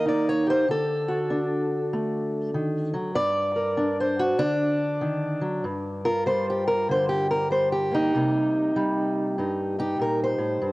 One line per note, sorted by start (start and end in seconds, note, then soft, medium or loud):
0.00 0.65 D#3 medium
0.00 0.65 A#3 medium
0.00 0.26 A#4 medium
0.05 0.65 D#4 medium
0.05 0.28 D5 medium
0.29 0.48 C#5 medium
0.47 0.66 G4 soft
0.47 0.69 C5 loud
0.68 3.13 D3 medium
0.68 1.93 A4 loud
1.08 3.14 F#4 soft
1.30 2.93 D4 medium
1.93 2.54 A3 medium
2.54 2.94 D#3 medium
2.94 3.16 F#3 medium
3.15 4.38 G2 medium
3.15 3.98 D5 loud
3.56 3.99 A#4 soft
3.77 4.37 D4 medium
4.00 4.20 C5 medium
4.19 4.40 F#4 medium
4.39 5.61 D3 medium
4.39 5.64 D4 loud
5.01 5.41 D#3 medium
5.41 5.64 F#3 medium
5.64 8.14 G2 medium
6.05 7.93 F4 soft
6.05 6.26 A#4 medium
6.26 7.50 G3 medium
6.26 6.48 C5 medium
6.50 6.67 G4 medium
6.67 6.89 A#4 medium
6.89 8.11 D3 medium
6.89 7.08 C5 medium
7.09 7.30 G4 medium
7.31 7.51 A#4 medium
7.50 8.15 G3 medium
7.50 7.72 C5 medium
7.72 8.14 G4 medium
7.92 8.15 A#3 soft
7.92 9.38 D#4 loud
8.15 9.39 C3 medium
8.15 8.76 G3 soft
8.15 10.27 A#3 soft
8.76 10.72 G3 medium
9.38 9.99 G2 medium
9.38 9.77 D#4 soft
9.79 10.61 D#4 medium
9.79 10.00 G4 medium
9.99 10.38 A#2 medium
9.99 10.22 A#4 medium
10.24 10.72 C5 medium
10.38 10.61 A2 medium
10.62 10.72 G2 medium